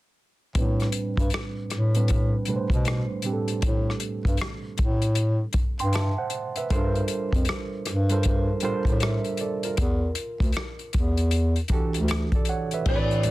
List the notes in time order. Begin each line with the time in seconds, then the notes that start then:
0.55 A2 G3 C4 D4 B4, kick, closed hi-hat
0.80 cross-stick, closed hi-hat
0.92 closed hi-hat
1.17 G2, kick, closed hi-hat
1.30 closed hi-hat
1.34 cross-stick
1.70 A2, cross-stick, closed hi-hat
1.95 A2 G3 C4 D4 B4, closed hi-hat
2.08 kick, closed hi-hat
2.45 A2 B2 G3 A3 D4, closed hi-hat
2.50 B4
2.56 C5
2.70 B2, kick, closed hi-hat
2.85 cross-stick, closed hi-hat
3.22 A2 G3 C4 D4, closed hi-hat
3.26 G4
3.33 A4
3.48 closed hi-hat
3.62 A2, kick, closed hi-hat
3.90 cross-stick
4.00 closed hi-hat
4.25 G2, kick, closed hi-hat
4.37 closed hi-hat
4.41 cross-stick
4.78 A2, kick, closed hi-hat
5.02 closed hi-hat
5.15 closed hi-hat
5.53 G2, kick, closed hi-hat
5.79 G2 G5 C6, closed hi-hat
5.93 E5 A5, cross-stick, closed hi-hat
6.18 C5 F#5
6.30 closed hi-hat
6.56 B4 E5, closed hi-hat
6.70 G2 G3 D4 F4 A4 A#4 C5, kick, closed hi-hat
6.95 closed hi-hat
7.08 closed hi-hat
7.33 F2, kick, closed hi-hat
7.45 closed hi-hat
7.49 cross-stick
7.86 G2, cross-stick, closed hi-hat
8.09 G3 D4 F4 A4 A#4 C5, closed hi-hat
8.23 kick, closed hi-hat
8.60 G3 D4 F4 A4, closed hi-hat
8.64 A2 A#4 C5
8.85 A2, kick, closed hi-hat
9.00 A#4 E5, cross-stick, closed hi-hat
9.24 closed hi-hat
9.37 A4 D5, closed hi-hat
9.63 F4 A#4, closed hi-hat
9.77 E2, kick, closed hi-hat
10.15 closed hi-hat
10.40 D2, kick, closed hi-hat
10.53 closed hi-hat
10.57 cross-stick
10.79 closed hi-hat
10.93 E2, kick, closed hi-hat
11.17 closed hi-hat
11.31 closed hi-hat
11.56 closed hi-hat
11.68 D2 E3 D4 F#4 G4, kick, closed hi-hat
11.73 A4
11.94 D2, closed hi-hat
12.08 cross-stick, closed hi-hat
12.32 A4 D5, kick, closed hi-hat
12.45 closed hi-hat
12.49 C#5 F#5
12.71 B4 E5, closed hi-hat
12.86 A2 E3 C4 D4 G4 A#4 D5, kick, crash, muted conga, low conga
12.96 B4
13.11 closed hi-hat
13.23 closed hi-hat, muted conga, high conga